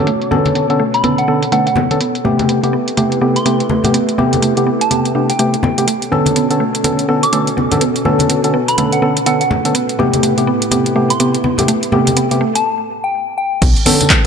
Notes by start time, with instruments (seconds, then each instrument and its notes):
Already playing: ambient pad B2 C#4 F#4 A4 C#5, synth stab B3 C#4 A4
0.07 synth arpeggio sound A3, closed hi-hat
0.22 closed hi-hat
0.31 synth stab D3 B3 C#4 A4, synth arpeggio sound B3, low conga
0.45 closed hi-hat, high conga
0.55 synth arpeggio sound B3, closed hi-hat
0.70 synth stab D3 B3 C#4 A4, closed hi-hat
0.80 synth arpeggio sound A3
0.94 synth bell B5, closed hi-hat
1.03 synth stab D3 B3 C#4 A4, synth arpeggio sound B3, closed hi-hat, high conga
1.18 synth bell F#5, closed hi-hat
1.28 synth stab D3 B3 C#4 A4, synth arpeggio sound B3
1.43 closed hi-hat
1.52 synth stab D3 B3 C#4 A4, synth arpeggio sound A3, synth bell F#5, closed hi-hat
1.67 synth bell F#5, closed hi-hat
1.76 synth arpeggio sound B3, high conga, low conga
1.91 synth stab D3 B3 C#4 A4, closed hi-hat
2.01 ambient pad A3 E4 G4 A4 B4, synth arpeggio sound B3, closed hi-hat
2.15 closed hi-hat
2.24 synth stab C3 A3 B3 G4, synth arpeggio sound A3, low conga
2.39 closed hi-hat, high conga
2.49 synth arpeggio sound B3, closed hi-hat
2.63 synth stab C3 A3 B3 G4, closed hi-hat
2.73 synth arpeggio sound B3
2.88 closed hi-hat
2.97 synth stab C3 A3 B3 G4, synth arpeggio sound A3, closed hi-hat, high conga
3.12 closed hi-hat
3.21 synth stab C3 A3 B3 G4, synth arpeggio sound B3
3.36 synth bell C6, closed hi-hat
3.45 synth stab C3 A3 B3 G4, synth arpeggio sound B3, closed hi-hat
3.60 closed hi-hat
3.70 synth arpeggio sound A3, high conga
3.84 synth stab C3 A3 B3 G4, closed hi-hat, low conga
3.94 synth arpeggio sound B3, closed hi-hat
4.09 closed hi-hat
4.18 synth stab C3 A3 B3 G4, synth arpeggio sound B3, low conga
4.33 closed hi-hat, high conga
4.42 synth arpeggio sound A3, closed hi-hat
4.57 synth stab C3 A3 B3 G4, closed hi-hat
4.67 synth arpeggio sound B3
4.81 synth bell A5, closed hi-hat
4.91 synth stab C3 A3 B3 G4, synth arpeggio sound B3, closed hi-hat, high conga
5.05 closed hi-hat
5.15 synth stab C3 A3 B3 G4, synth arpeggio sound D4
5.30 synth bell G5, closed hi-hat
5.39 synth stab C3 A3 B3 G4, synth arpeggio sound A3, closed hi-hat
5.54 closed hi-hat
5.63 synth arpeggio sound B3, synth bell G5, high conga, low conga
5.78 synth stab C3 A3 B3 G4, closed hi-hat
5.88 ambient pad B2 C#4 F#4 A4 C#5, synth arpeggio sound A3, closed hi-hat
6.02 closed hi-hat
6.12 synth stab D3 B3 C#4 A4, synth arpeggio sound B3, low conga
6.26 closed hi-hat, high conga
6.36 synth arpeggio sound B3, closed hi-hat
6.50 synth stab D3 B3 C#4 A4, closed hi-hat
6.60 synth arpeggio sound A3
6.75 closed hi-hat
6.84 synth stab D3 B3 C#4 A4, synth arpeggio sound B3, closed hi-hat, high conga
6.99 closed hi-hat
7.08 synth stab D3 B3 C#4 A4, synth arpeggio sound B3
7.23 synth bell D6, closed hi-hat
7.32 synth stab D3 B3 C#4 A4, synth arpeggio sound A3, closed hi-hat
7.47 closed hi-hat
7.57 synth arpeggio sound B3, high conga
7.71 synth stab D3 B3 C#4 A4, closed hi-hat, low conga
7.81 synth arpeggio sound B3, ambient pad B4, closed hi-hat
7.96 closed hi-hat
8.05 synth stab D3 B3 C#4 A4, synth arpeggio sound A3, low conga
8.19 closed hi-hat, high conga
8.30 synth arpeggio sound B3, closed hi-hat
8.44 synth stab D3 B3 C#4 A4, closed hi-hat
8.54 synth arpeggio sound B3
8.68 synth bell B5, closed hi-hat
8.78 synth stab D3 B3 C#4 A4, synth arpeggio sound A3, closed hi-hat, high conga
8.92 synth bell F#5, closed hi-hat
9.02 synth stab D3 B3 C#4 A4, synth arpeggio sound B3
9.17 closed hi-hat
9.26 synth stab D3 B3 C#4 A4, synth arpeggio sound B3, synth bell F#5, closed hi-hat
9.41 synth bell F#5, closed hi-hat
9.51 synth arpeggio sound A3, high conga, low conga
9.65 synth stab D3 B3 C#4 A4, closed hi-hat
9.75 ambient pad A2 B3 E4 G4, synth arpeggio sound B3, closed hi-hat
9.89 closed hi-hat
9.99 synth stab C3 A3 B3 G4, synth arpeggio sound B3, low conga
10.14 closed hi-hat, high conga
10.23 synth arpeggio sound A3, closed hi-hat
10.37 synth stab C3 A3 B3 G4, closed hi-hat
10.47 synth arpeggio sound B3
10.62 closed hi-hat
10.71 synth stab C3 A3 B3 G4, synth arpeggio sound B3, closed hi-hat, high conga
10.86 closed hi-hat
10.95 synth stab C3 A3 B3 G4, synth arpeggio sound A3
11.10 synth bell C6, closed hi-hat
11.20 synth stab C3 A3 B3 G4, synth arpeggio sound B3, closed hi-hat
11.35 closed hi-hat
11.44 synth arpeggio sound B3, high conga
11.58 synth stab C3 A3 B3 G4, closed hi-hat, low conga
11.68 synth arpeggio sound A3, ambient pad A4, closed hi-hat
11.83 closed hi-hat
11.92 synth stab C3 A3 B3 G4, synth arpeggio sound B3, low conga
12.07 closed hi-hat, high conga
12.17 synth arpeggio sound B3, closed hi-hat
12.31 synth stab C3 A3 B3 G4, closed hi-hat
12.41 synth arpeggio sound A3
12.55 synth bell A5, closed hi-hat
13.04 synth bell G5
13.38 synth bell G5
13.62 fm bass B1, synth arpeggio sound B3, ambient pad C#4 A4 C#5, kick, closed hi-hat, tambourine, crash
13.76 closed hi-hat, tambourine
13.86 synth stab D3 B3 C#4 A4, synth arpeggio sound B3, open hi-hat, low conga
14.01 closed hi-hat, tambourine, high conga
14.10 synth arpeggio sound A3, kick, clap, closed hi-hat, tambourine